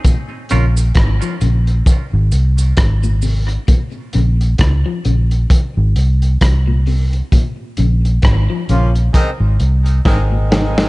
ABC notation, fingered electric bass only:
X:1
M:4/4
L:1/16
Q:"Swing 16ths" 1/4=66
K:Bbm
V:1 name="Fingered electric bass" clef=bass
z2 B,,,2 A,,, z B,,,2 z A,,, C,,2 A,,,4 | z2 B,,,2 D,, z B,,,2 z A,,, C,,2 C,,4 | z2 B,,,2 A,,, z B,,,2 z A,,, C,,2 A,,,4 |]